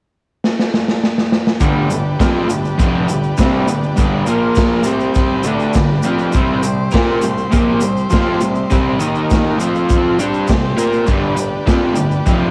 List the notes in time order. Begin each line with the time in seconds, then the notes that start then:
0.44 snare
0.59 snare
0.74 snare
0.88 snare
1.03 snare
1.18 snare
1.32 snare
1.47 snare
1.60 G2 D3 G3 D4 G4, kick, crash, shaker
1.64 B4
1.90 G2 D3, shaker
2.20 F3 C4 F4, kick, snare, crash, shaker
2.49 G2 D3, shaker
2.65 shaker
2.78 F2 C3 F3, kick, crash, shaker
3.09 G2 D3, shaker
3.23 shaker
3.37 C3 G3 C4, kick, snare, crash, shaker
3.68 G2 D3, shaker
3.83 shaker
3.96 G2 D3 G3, kick, crash, shaker
4.26 A#2 F3 A#3 F4 A#4, shaker
4.55 kick, snare, crash, shaker
4.84 C3 G3 C4 G4 C5, shaker
4.88 C4
5.00 shaker
5.15 kick, crash, shaker
5.43 D3 A3 D4 G4 B4, shaker
5.59 shaker
5.73 G2 D3, kick, snare, crash, shaker
6.03 F3 C4 F4, shaker
6.19 shaker
6.32 C3 G3 C4 G4 C5, kick, crash, shaker
6.37 C4
6.63 C3 G3, shaker
6.91 A#3 F4 A#4, kick, crash, shaker
6.95 snare
7.22 C3 G3, shaker
7.38 shaker
7.51 A#2 F3 A#3, kick, crash, shaker
7.81 C3 G3, shaker
7.97 shaker
8.10 F3 C4 F4, kick, snare, crash, shaker
8.41 C3 G3, shaker
8.55 shaker
8.70 C3 G3 C4, kick, crash, shaker
8.99 D#3 A#3 D#4 A#4, shaker
9.15 shaker
9.30 kick, snare, crash, shaker
9.58 F3 C4 F4 C5, shaker
9.75 shaker
9.89 kick, crash, shaker
10.18 G3 C4 D4 G4 C5, shaker
10.34 shaker
10.47 C3 G3, kick, snare, crash, shaker
10.77 A#3 F4 A#4, shaker
10.93 shaker
11.06 G2 D3 G3 D4 G4, kick, crash, shaker
11.11 B4
11.36 G2 D3, shaker
11.66 F3 C4 F4, kick, snare, crash, shaker
11.95 G2 D3, shaker
12.11 shaker
12.26 F2 C3 F3, kick, crash, shaker